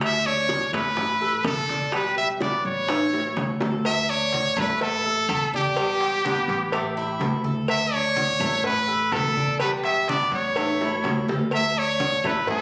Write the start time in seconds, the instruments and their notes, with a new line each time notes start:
Already playing: upright bass D2, cuban tres A4
0.01 trumpet E5, high bongo, high conga, high timbale, claves
0.25 cuban tres D4, trumpet C#5, high bongo, high conga
0.49 high bongo, high conga, high timbale
0.73 upright bass A1, cuban tres A3, trumpet B4, high bongo, high conga, low conga, high timbale, claves
0.97 cuban tres E4, high bongo, high conga, low conga
1.21 cuban tres A4, high bongo, high conga
1.44 upright bass E1, trumpet A4, high bongo, low bongo, high conga, high timbale, claves
1.69 cuban tres D4, high conga, high timbale
1.92 cuban tres G3, trumpet B4, high bongo, high conga, high timbale, claves
2.16 trumpet E5, high bongo, high conga
2.41 cuban tres B3, trumpet D5, high bongo, high conga, high timbale
2.64 upright bass A1, trumpet C#5, high bongo, high conga
2.88 cuban tres A3, high bongo, high conga, high timbale, claves
3.13 cuban tres E4, high bongo, high conga, low timbale
3.37 upright bass D2, high bongo, low bongo, high conga
3.61 cuban tres A4, high bongo, high conga, low timbale
3.85 trumpet E5, cowbell, high conga, low agogo, claves
4.09 cuban tres D4, trumpet C#5, high conga, low agogo
4.33 cowbell, high conga
4.56 upright bass A1, cuban tres A3, trumpet B4, high conga, low conga, low agogo, claves
4.81 cuban tres E4, trumpet A4, cowbell, high conga, low agogo
5.05 cuban tres A4, high conga
5.29 upright bass E1, cowbell, high conga, low agogo, claves
5.53 cuban tres D4, trumpet G4, high conga
5.77 cuban tres G3, cowbell, high conga, low agogo, claves
6.00 cowbell, high conga
6.25 cuban tres B3, cowbell, high conga, low agogo
6.48 upright bass A1, cowbell, high conga
6.72 cuban tres A3, cowbell, high conga, low agogo, claves
6.97 cuban tres E4, high conga, low agogo
7.20 upright bass D2, cowbell, high conga, low timbale, low agogo
7.44 cuban tres A4, high conga
7.68 trumpet E5, cowbell, high conga, low agogo, claves
7.93 cuban tres D4, trumpet C#5, high conga, low agogo
8.16 cowbell, high conga
8.39 upright bass A1, cuban tres A3, high conga, low conga, low agogo, claves
8.64 cuban tres E4, trumpet B4, cowbell, high conga, low conga, low agogo
8.88 cuban tres A4, high conga
9.12 upright bass E1, trumpet A4, cowbell, high conga, low timbale, low agogo, claves
9.36 cuban tres D4, high conga
9.60 cuban tres G3, trumpet B4, cowbell, high conga, low agogo, claves
9.84 trumpet E5, cowbell, high conga
10.08 cuban tres B3, trumpet D5, cowbell, high conga, low agogo
10.32 upright bass A1, trumpet C#5, cowbell, high conga
10.56 cuban tres A3, cowbell, high conga, high timbale, low agogo, claves
10.81 cuban tres E4, high conga, low timbale, low agogo
11.04 upright bass D2, cowbell, high conga, low timbale, low agogo
11.28 cuban tres A4, high conga, low timbale
11.51 trumpet E5, cowbell, high conga, low agogo, claves
11.77 cuban tres D4, trumpet C#5, high conga, low agogo
12.00 cowbell, high conga
12.24 upright bass A1, cuban tres A3, trumpet B4, high conga, low conga, low agogo, claves
12.47 cuban tres E4, trumpet A4, cowbell, high conga, low conga, low agogo